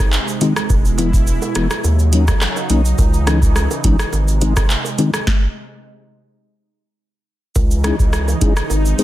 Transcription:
0.00 0.69 C3 medium
0.00 1.82 G#3 medium
0.00 0.68 D#4 medium
0.00 impact medium
0.13 clap loud
0.13 shaker medium
0.27 high bongo medium
0.27 shaker medium
0.41 0.53 D#3 medium
0.41 0.53 G#3 medium
0.41 0.54 C4 medium
0.41 0.54 D#4 medium
0.41 closed hi-hat medium
0.41 low bongo medium
0.41 shaker medium
0.56 cross-stick loud
0.56 shaker medium
0.70 1.39 E1 loud
0.70 1.83 B2 medium
0.70 1.83 E4 medium
0.70 kick loud
0.70 high bongo medium
0.70 shaker medium
0.85 shaker medium
0.98 1.11 E3 medium
0.98 1.11 G#3 medium
0.98 1.11 B3 medium
0.98 1.11 E4 medium
0.98 closed hi-hat medium
0.98 high bongo medium
0.98 shaker medium
1.13 kick loud
1.13 shaker medium
1.27 shaker medium
1.42 high bongo medium
1.42 shaker medium
1.55 1.68 E1 loud
1.55 1.68 E3 medium
1.55 1.68 G#3 medium
1.55 1.68 B3 medium
1.55 1.68 E4 medium
1.55 cross-stick loud
1.55 closed hi-hat medium
1.55 low bongo medium
1.55 shaker medium
1.71 cross-stick loud
1.71 shaker medium
1.84 2.31 D#2 loud
1.84 2.97 C#3 medium
1.84 2.97 F#3 medium
1.84 5.24 D#4 medium
1.84 high bongo medium
1.84 shaker medium
1.99 shaker medium
2.13 2.25 F#3 medium
2.13 2.25 A#3 medium
2.13 2.25 C#4 medium
2.13 2.25 D#4 medium
2.13 closed hi-hat medium
2.13 shaker medium
2.28 kick loud
2.28 cross-stick loud
2.28 high bongo medium
2.28 shaker medium
2.41 cross-stick loud
2.41 clap loud
2.41 shaker medium
2.56 high bongo medium
2.56 shaker medium
2.70 2.93 B1 loud
2.70 2.82 F#3 medium
2.70 2.82 A#3 medium
2.70 2.82 C#4 medium
2.70 2.82 D#4 medium
2.70 closed hi-hat medium
2.70 low bongo medium
2.70 shaker medium
2.85 shaker medium
2.98 3.67 C#2 loud
2.98 4.12 C#3 medium
2.98 4.12 E3 medium
2.98 kick loud
2.98 high bongo medium
2.98 shaker medium
3.14 shaker soft
3.27 3.39 E3 medium
3.27 3.39 G#3 medium
3.27 3.39 C#4 medium
3.27 3.39 D#4 loud
3.27 cross-stick loud
3.27 closed hi-hat medium
3.27 high bongo medium
3.27 shaker soft
3.42 kick loud
3.42 shaker medium
3.56 cross-stick medium
3.56 shaker medium
3.71 high bongo medium
3.71 shaker medium
3.84 3.97 A#1 loud
3.84 3.96 E3 medium
3.84 3.96 G#3 medium
3.84 3.96 C#4 medium
3.84 3.97 D#4 loud
3.84 kick loud
3.84 closed hi-hat medium
3.84 low bongo medium
3.84 shaker medium
3.99 cross-stick loud
3.99 shaker medium
4.13 4.60 G#1 loud
4.13 5.26 C3 medium
4.13 5.26 G#3 medium
4.13 high bongo medium
4.13 shaker medium
4.28 shaker medium
4.41 4.54 D#3 medium
4.41 4.54 G#3 medium
4.41 4.54 C4 medium
4.41 4.54 D#4 medium
4.41 closed hi-hat medium
4.41 shaker medium
4.56 kick loud
4.56 cross-stick loud
4.56 high bongo medium
4.56 shaker medium
4.70 clap loud
4.70 shaker medium
4.84 high bongo medium
4.84 shaker medium
4.98 5.11 D#3 medium
4.98 5.11 G#3 medium
4.98 5.11 C4 medium
4.98 5.11 D#4 loud
4.98 closed hi-hat medium
4.98 low bongo medium
4.98 shaker medium
5.14 cross-stick loud
5.14 shaker medium
5.27 kick loud
5.27 snare medium
7.56 7.92 C#2 loud
7.56 8.69 C#3 medium
7.56 8.69 E3 medium
7.56 9.04 D#4 medium
7.56 kick loud
7.56 high bongo medium
7.56 shaker medium
7.71 shaker medium
7.84 7.96 G#3 medium
7.84 7.96 C#4 medium
7.84 7.96 D#4 medium
7.84 7.97 E4 medium
7.84 7.97 G#4 loud
7.84 cross-stick loud
7.84 closed hi-hat medium
7.84 high bongo medium
7.84 shaker soft
7.99 8.34 C#2 medium
7.99 kick loud
7.99 shaker medium
8.13 cross-stick loud
8.13 shaker medium
8.28 high bongo medium
8.28 shaker medium
8.41 8.53 G#3 medium
8.41 8.54 C#4 medium
8.41 8.54 D#4 medium
8.41 8.54 E4 medium
8.41 8.54 G#4 loud
8.41 kick loud
8.41 closed hi-hat medium
8.41 shaker medium
8.57 cross-stick loud
8.57 shaker medium
8.70 8.94 G#1 loud
8.70 9.04 C3 medium
8.70 9.04 G#3 medium
8.70 high bongo medium
8.70 shaker medium
8.85 shaker medium
8.98 9.04 G#3 medium
8.98 9.04 C4 medium
8.98 9.04 D#4 medium
8.98 9.04 G#4 medium
8.98 9.04 C5 loud
8.98 closed hi-hat medium
8.98 shaker medium

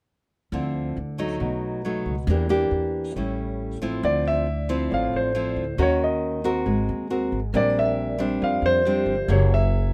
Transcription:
0.52 0.93 D2 medium
0.52 1.38 D3 soft
0.52 0.97 F3 soft
0.52 0.97 C4 soft
0.52 0.97 E4 soft
0.97 1.37 D2 medium
1.18 1.81 F#3 soft
1.18 1.81 A3 medium
1.18 1.81 D#4 medium
1.40 2.02 B1 medium
1.40 2.26 B2 soft
1.85 2.14 F#3 soft
1.85 2.14 A3 soft
1.85 2.15 D#4 soft
2.06 2.26 C#2 medium
2.27 2.68 E2 loud
2.27 3.15 E3 soft
2.27 2.47 A#3 soft
2.27 2.48 D4 soft
2.27 2.48 G4 soft
2.49 3.12 A#3 medium
2.49 3.12 D4 soft
2.49 3.13 G4 medium
2.71 3.12 E2 medium
3.16 3.78 A1 medium
3.16 4.02 A2 soft
3.16 3.79 G3 soft
3.16 3.79 C#4 soft
3.16 3.79 E4 soft
3.81 4.02 A1 medium
3.81 4.46 F3 medium
3.81 4.46 C4 medium
3.81 4.46 E4 medium
4.03 4.87 D2 loud
4.03 4.89 D3 soft
4.03 4.27 D5 medium
4.26 5.06 D5 soft
4.26 4.94 E5 medium
4.69 5.32 F3 medium
4.69 5.32 C4 medium
4.69 5.32 E4 medium
4.91 5.12 A1 medium
4.91 5.76 A2 soft
4.91 5.15 F5 medium
5.13 5.54 A1 medium
5.13 5.82 C5 medium
5.35 5.63 F3 medium
5.35 5.63 C4 soft
5.35 5.64 E4 medium
5.56 5.77 D2 medium
5.78 6.62 D#2 medium
5.78 6.64 D#3 soft
5.78 6.41 C#4 soft
5.78 6.41 F#4 soft
5.78 6.41 A#4 medium
5.82 6.01 C#5 medium
6.04 6.86 D#5 medium
6.44 7.07 C4 soft
6.44 7.07 F#4 medium
6.44 7.07 A#4 medium
6.66 6.87 G#1 medium
6.66 7.52 G#3 soft
6.89 7.29 D#2 medium
7.10 7.39 C4 soft
7.10 7.39 F#4 soft
7.10 7.39 A#4 soft
7.32 7.53 G#1 medium
7.53 8.38 A#1 loud
7.53 8.40 A#2 soft
7.53 8.16 G3 soft
7.53 8.17 C4 soft
7.53 8.17 D4 soft
7.53 8.34 A#4 soft
7.53 7.78 D5 medium
7.70 8.48 D5 soft
7.79 8.45 E5 medium
7.85 8.61 E5 soft
8.19 8.81 G3 medium
8.19 8.82 C4 soft
8.19 8.82 D4 medium
8.42 8.61 F2 medium
8.42 9.27 F3 soft
8.42 8.65 F5 medium
8.62 9.04 F2 medium
8.62 9.32 C5 loud
8.86 9.14 G3 medium
8.86 9.14 C4 soft
8.86 9.15 D4 soft
8.86 9.47 G4 medium
9.06 9.27 G1 medium
9.28 9.93 F#1 loud
9.28 9.93 F#3 soft
9.28 9.91 A#3 soft
9.28 9.92 E4 soft
9.28 9.92 G#4 soft
9.28 9.51 C#5 medium
9.54 9.93 E5 medium

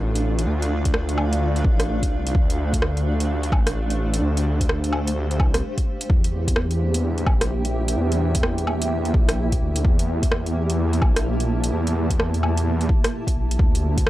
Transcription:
0.00 0.46 A1 medium
0.00 6.10 A3 medium
0.00 7.93 D4 medium
0.00 2.43 F4 medium
0.00 3.39 D5 medium
0.00 6.10 F5 medium
0.15 closed hi-hat soft
0.39 closed hi-hat medium
0.47 1.63 D2 loud
0.62 closed hi-hat soft
0.85 kick medium
0.85 closed hi-hat medium
0.94 cross-stick loud
1.09 closed hi-hat soft
1.18 low woodblock medium
1.33 closed hi-hat medium
1.56 closed hi-hat soft
1.64 2.10 A1 medium
1.64 kick loud
1.80 cross-stick loud
1.80 closed hi-hat medium
2.03 kick medium
2.03 closed hi-hat soft
2.11 2.33 C2 medium
2.27 14.10 G4 medium
2.27 closed hi-hat medium
2.35 3.51 D2 loud
2.35 kick loud
2.50 closed hi-hat soft
2.73 kick medium
2.73 closed hi-hat medium
2.82 cross-stick loud
2.97 closed hi-hat soft
3.20 closed hi-hat medium
3.25 7.60 C5 medium
3.43 closed hi-hat soft
3.52 4.21 A1 medium
3.52 kick loud
3.52 low woodblock medium
3.67 cross-stick loud
3.67 closed hi-hat medium
3.90 closed hi-hat soft
4.14 closed hi-hat medium
4.22 5.41 D2 loud
4.37 closed hi-hat soft
4.61 kick medium
4.61 closed hi-hat medium
4.69 cross-stick loud
4.84 closed hi-hat soft
4.93 low woodblock medium
5.07 closed hi-hat medium
5.31 closed hi-hat soft
5.40 5.62 C2 medium
5.40 kick loud
5.40 low woodblock medium
5.54 cross-stick loud
5.54 closed hi-hat medium
5.78 kick medium
5.78 closed hi-hat soft
6.01 closed hi-hat medium
6.10 7.26 E2 loud
6.10 13.60 A#3 medium
6.10 kick loud
6.22 13.60 E4 medium
6.22 closed hi-hat soft
6.45 10.25 G5 medium
6.45 kick medium
6.45 closed hi-hat medium
6.56 cross-stick loud
6.71 13.60 E5 medium
6.71 closed hi-hat soft
6.94 closed hi-hat medium
7.18 closed hi-hat soft
7.26 7.96 A#1 medium
7.26 kick loud
7.26 low woodblock medium
7.41 cross-stick loud
7.41 closed hi-hat medium
7.65 closed hi-hat soft
7.88 closed hi-hat medium
7.97 9.13 E2 loud
8.12 closed hi-hat soft
8.35 kick medium
8.35 closed hi-hat medium
8.43 cross-stick loud
8.58 closed hi-hat soft
8.67 low woodblock medium
8.82 closed hi-hat medium
9.05 closed hi-hat soft
9.14 9.60 A#1 medium
9.14 kick loud
9.29 cross-stick loud
9.29 closed hi-hat medium
9.52 kick medium
9.52 closed hi-hat soft
9.62 9.84 D2 medium
9.76 closed hi-hat medium
9.85 11.01 E2 loud
9.85 kick loud
9.99 closed hi-hat soft
10.10 14.10 A5 medium
10.23 kick medium
10.23 closed hi-hat medium
10.32 cross-stick loud
10.46 closed hi-hat soft
10.70 closed hi-hat medium
10.93 closed hi-hat soft
11.02 11.71 A#1 medium
11.02 kick loud
11.02 low woodblock medium
11.16 cross-stick loud
11.16 closed hi-hat medium
11.40 closed hi-hat soft
11.64 closed hi-hat medium
11.73 12.89 E2 loud
11.87 closed hi-hat soft
12.10 kick medium
12.10 closed hi-hat medium
12.20 cross-stick loud
12.34 closed hi-hat soft
12.43 low woodblock medium
12.57 closed hi-hat medium
12.81 closed hi-hat soft
12.89 kick loud
13.04 cross-stick loud
13.04 closed hi-hat medium
13.27 kick medium
13.27 closed hi-hat soft
13.36 13.58 A#1 loud
13.51 closed hi-hat medium
13.59 14.10 D2 loud
13.59 14.10 A3 medium
13.59 kick loud
13.73 14.10 D5 medium
13.73 closed hi-hat soft
13.85 14.10 D4 medium
13.85 14.10 F4 medium
13.97 kick medium
13.97 closed hi-hat medium
14.07 cross-stick loud

